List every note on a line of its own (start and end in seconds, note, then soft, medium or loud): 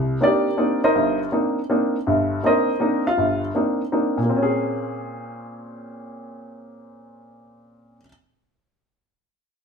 0.00 0.16 C2 medium
0.21 0.47 A#3 soft
0.21 0.47 C4 soft
0.21 0.47 D4 soft
0.21 0.47 D#4 medium
0.21 0.80 G4 medium
0.21 0.80 A#4 medium
0.21 0.80 D5 medium
0.57 0.83 A#3 medium
0.57 0.84 C4 soft
0.57 0.84 D4 soft
0.57 0.83 D#4 medium
0.84 1.18 D#4 medium
0.84 1.18 A#4 medium
0.84 1.18 C5 medium
0.84 1.18 D#5 medium
0.95 1.27 G1 medium
0.95 1.27 G2 medium
1.32 1.58 A#3 soft
1.32 1.58 C4 soft
1.32 1.58 D4 soft
1.32 1.58 D#4 medium
1.70 1.95 A#3 medium
1.70 1.95 C4 medium
1.70 1.95 D4 soft
1.70 1.96 D#4 medium
2.07 2.39 G1 medium
2.07 2.39 G2 medium
2.44 2.69 A#3 medium
2.44 2.69 C4 medium
2.44 2.70 D4 soft
2.44 2.70 D#4 medium
2.44 3.03 A#4 medium
2.44 3.03 C5 medium
2.44 3.02 D#5 medium
2.80 3.06 A#3 medium
2.80 3.06 C4 soft
2.80 3.06 D4 soft
2.80 3.07 D#4 medium
3.07 3.41 F4 medium
3.07 3.41 F5 medium
3.17 3.50 G1 medium
3.17 3.50 G2 medium
3.55 3.80 A#3 soft
3.55 3.81 C4 soft
3.55 3.81 D4 soft
3.55 3.81 D#4 medium
3.92 4.18 A#3 medium
3.92 4.18 C4 soft
3.92 4.18 D4 soft
3.92 4.18 D#4 medium
4.17 7.96 A#2 medium
4.24 7.99 A#3 medium
4.29 8.02 C4 medium
4.36 8.05 C#4 medium
4.42 8.08 G#4 medium